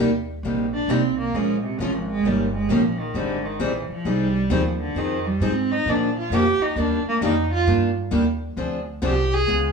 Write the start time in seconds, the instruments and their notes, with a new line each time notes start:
0.00 upright bass D#2, steel-string acoustic guitar D#4 G4
0.43 upright bass A#1, steel-string acoustic guitar C3 G3 A#3 D#4 G4
0.74 cello D4
0.88 upright bass C2, steel-string acoustic guitar C3 G3 A#3 D#4 G4, cello C4
1.19 cello A#3
1.33 upright bass A#1, steel-string acoustic guitar F3 G#3 C#4 F4 A#4, cello G#3
1.64 cello C3
1.79 upright bass G#1, steel-string acoustic guitar F3 G#3 C#4 F4 A#4, cello F3
2.09 cello G#3
2.24 upright bass G1, steel-string acoustic guitar D#3 A#3 C#4 G4 A#4, cello G3
2.55 cello G#3
2.69 upright bass A#1, steel-string acoustic guitar D#3 A#3 C#4 G4 A#4, cello F3
3.00 cello D#3
3.14 upright bass G#1, cello D3, steel-string acoustic guitar D#3 G3 C4 D#4 G#4
3.45 cello D#3
3.59 upright bass A#1, steel-string acoustic guitar D#3 G3 C4 D#4 G#4, cello E3
3.89 cello F3, muted upright bass stroke
4.05 upright bass C2, steel-string acoustic guitar D#3 G3 C4 D#4 G#4, cello G3
4.50 upright bass D#2, steel-string acoustic guitar D#3 G3 C4 D#4 G#4, cello F3
4.80 cello D3
4.95 upright bass F2, cello D#3, steel-string acoustic guitar F3 C4 D#4 G#4
5.26 cello G3
5.40 upright bass G#2, steel-string acoustic guitar F3 C4 D#4 G#4, cello C4
5.72 cello D#4
5.86 upright bass A#2, steel-string acoustic guitar D3 F3 A#3 D4 G#4, cello D4
6.19 cello F4
6.30 upright bass F2, steel-string acoustic guitar D3 F3 A#3 D4 G#4
6.34 cello G4
6.59 cello D#4, muted upright bass stroke
6.76 upright bass D#2, steel-string acoustic guitar D#3 G3 A#3 D4 G4, cello D4
7.04 cello A#3, muted upright bass stroke
7.21 upright bass F2, steel-string acoustic guitar D#3 G3 A#3 D4 G4, cello D#4
7.53 cello F4
7.67 upright bass G2, steel-string acoustic guitar D#3 G3 A#3 D4 G4
8.11 upright bass D#2, steel-string acoustic guitar D#3 G3 A#3 D4 G4
8.57 upright bass D2, steel-string acoustic guitar D3 F3 C4 D4 G#4
9.02 upright bass C2, steel-string acoustic guitar D3 F3 C4 D4 G#4
9.06 cello G4
9.34 cello G#4
9.48 upright bass C#2, steel-string acoustic guitar C#3 G#3 B3 F4 G#4